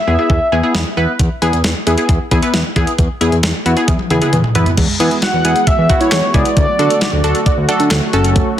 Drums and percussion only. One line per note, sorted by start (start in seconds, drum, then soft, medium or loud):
0.30 kick loud
0.75 snare loud
1.19 kick loud
1.19 closed hi-hat medium
1.42 closed hi-hat medium
1.53 closed hi-hat soft
1.64 snare loud
1.64 closed hi-hat medium
1.87 closed hi-hat medium
1.98 closed hi-hat soft
2.09 kick loud
2.09 closed hi-hat medium
2.31 kick loud
2.31 closed hi-hat medium
2.42 closed hi-hat medium
2.54 snare loud
2.54 closed hi-hat medium
2.76 kick medium
2.76 closed hi-hat medium
2.87 closed hi-hat medium
2.98 kick loud
2.98 closed hi-hat medium
3.21 closed hi-hat medium
3.32 closed hi-hat soft
3.43 snare loud
3.43 closed hi-hat medium
3.66 closed hi-hat medium
3.77 closed hi-hat soft
3.88 kick medium
3.88 closed hi-hat medium
3.88 high tom medium
3.99 high tom medium
4.10 closed hi-hat medium
4.10 mid tom medium
4.22 closed hi-hat medium
4.22 mid tom medium
4.33 closed hi-hat medium
4.33 mid tom medium
4.44 mid tom medium
4.55 closed hi-hat medium
4.55 floor tom loud
4.66 closed hi-hat medium
4.66 floor tom medium
4.77 kick loud
4.77 closed hi-hat medium
4.77 crash loud
5.00 closed hi-hat medium
5.11 closed hi-hat soft
5.22 snare loud
5.22 closed hi-hat medium
5.45 closed hi-hat medium
5.56 closed hi-hat soft
5.67 kick loud
5.67 closed hi-hat medium
5.89 kick loud
5.89 closed hi-hat medium
6.01 closed hi-hat medium
6.12 snare loud
6.12 clap loud
6.12 closed hi-hat medium
6.34 kick medium
6.34 closed hi-hat medium
6.45 closed hi-hat medium
6.57 kick loud
6.57 closed hi-hat medium
6.79 closed hi-hat medium
6.90 closed hi-hat soft
7.01 snare loud
7.01 closed hi-hat medium
7.24 closed hi-hat medium
7.35 closed hi-hat soft
7.46 kick loud
7.46 closed hi-hat medium
7.69 closed hi-hat medium
7.80 closed hi-hat medium
7.91 snare loud
7.91 clap loud
7.91 closed hi-hat medium
8.13 closed hi-hat medium
8.24 closed hi-hat medium
8.36 kick loud
8.36 closed hi-hat medium